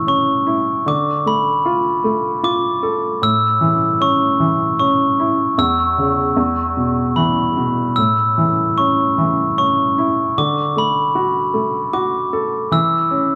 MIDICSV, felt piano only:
0, 0, Header, 1, 2, 480
1, 0, Start_track
1, 0, Key_signature, 3, "major"
1, 0, Tempo, 786370
1, 527, Time_signature, 3, 2, 24, 8
1, 3882, Tempo, 803213
1, 6282, Tempo, 782269
1, 8108, End_track
2, 0, Start_track
2, 0, Title_t, "Felt piano"
2, 0, Program_c, 0, 0
2, 0, Control_c, 0, 64, 127
2, 0, Note_on_c, 0, 45, 52
2, 0, Note_on_c, 0, 52, 45
2, 0, Note_on_c, 0, 61, 44
2, 43, Note_off_c, 0, 61, 0
2, 43, Note_on_c, 0, 61, 48
2, 285, Note_on_c, 0, 64, 47
2, 501, Note_off_c, 0, 45, 0
2, 508, Note_off_c, 0, 52, 0
2, 513, Note_off_c, 0, 61, 0
2, 520, Note_off_c, 0, 64, 0
2, 526, Note_on_c, 0, 50, 55
2, 535, Control_c, 0, 64, 0
2, 653, Control_c, 0, 64, 127
2, 768, Note_on_c, 0, 57, 46
2, 1010, Note_on_c, 0, 65, 47
2, 1237, Note_off_c, 0, 57, 0
2, 1246, Note_on_c, 0, 57, 51
2, 1477, Note_off_c, 0, 65, 0
2, 1486, Note_on_c, 0, 65, 51
2, 1727, Note_on_c, 0, 69, 51
2, 1942, Note_off_c, 0, 50, 0
2, 1944, Note_off_c, 0, 57, 0
2, 1951, Note_off_c, 0, 65, 0
2, 1959, Note_off_c, 0, 69, 0
2, 1965, Note_on_c, 0, 45, 55
2, 1976, Control_c, 0, 64, 0
2, 2093, Control_c, 0, 64, 127
2, 2203, Note_on_c, 0, 52, 46
2, 2445, Note_on_c, 0, 61, 53
2, 2676, Note_off_c, 0, 52, 0
2, 2686, Note_on_c, 0, 52, 44
2, 2920, Note_off_c, 0, 61, 0
2, 2929, Note_on_c, 0, 61, 49
2, 3172, Note_on_c, 0, 64, 46
2, 3377, Note_off_c, 0, 45, 0
2, 3381, Note_off_c, 0, 52, 0
2, 3390, Note_off_c, 0, 61, 0
2, 3399, Note_off_c, 0, 64, 0
2, 3407, Note_on_c, 0, 40, 58
2, 3411, Control_c, 0, 64, 0
2, 3510, Control_c, 0, 64, 127
2, 3651, Note_on_c, 0, 49, 42
2, 3869, Note_off_c, 0, 40, 0
2, 3879, Note_off_c, 0, 49, 0
2, 3885, Note_on_c, 0, 40, 56
2, 3889, Control_c, 0, 64, 0
2, 3981, Control_c, 0, 64, 127
2, 4127, Note_on_c, 0, 47, 45
2, 4364, Note_on_c, 0, 52, 46
2, 4596, Note_off_c, 0, 47, 0
2, 4605, Note_on_c, 0, 47, 43
2, 4818, Note_off_c, 0, 40, 0
2, 4828, Note_off_c, 0, 52, 0
2, 4836, Note_off_c, 0, 47, 0
2, 4848, Note_on_c, 0, 45, 52
2, 4849, Control_c, 0, 64, 0
2, 4942, Control_c, 0, 64, 127
2, 5087, Note_on_c, 0, 52, 46
2, 5333, Note_on_c, 0, 61, 43
2, 5559, Note_off_c, 0, 52, 0
2, 5568, Note_on_c, 0, 52, 47
2, 5797, Note_off_c, 0, 61, 0
2, 5806, Note_on_c, 0, 61, 45
2, 6047, Note_on_c, 0, 64, 49
2, 6261, Note_off_c, 0, 45, 0
2, 6261, Note_off_c, 0, 52, 0
2, 6268, Note_off_c, 0, 61, 0
2, 6276, Note_off_c, 0, 64, 0
2, 6283, Note_on_c, 0, 50, 61
2, 6290, Control_c, 0, 64, 0
2, 6386, Control_c, 0, 64, 127
2, 6519, Note_on_c, 0, 57, 44
2, 6758, Note_on_c, 0, 66, 46
2, 6985, Note_off_c, 0, 57, 0
2, 6994, Note_on_c, 0, 57, 45
2, 7228, Note_off_c, 0, 66, 0
2, 7238, Note_on_c, 0, 66, 50
2, 7482, Note_on_c, 0, 69, 49
2, 7698, Note_off_c, 0, 57, 0
2, 7699, Note_off_c, 0, 50, 0
2, 7706, Note_off_c, 0, 66, 0
2, 7715, Note_off_c, 0, 69, 0
2, 7718, Note_on_c, 0, 52, 60
2, 7731, Control_c, 0, 64, 0
2, 7853, Control_c, 0, 64, 127
2, 7959, Note_on_c, 0, 61, 49
2, 8108, Note_off_c, 0, 52, 0
2, 8108, Note_off_c, 0, 61, 0
2, 8108, End_track
0, 0, End_of_file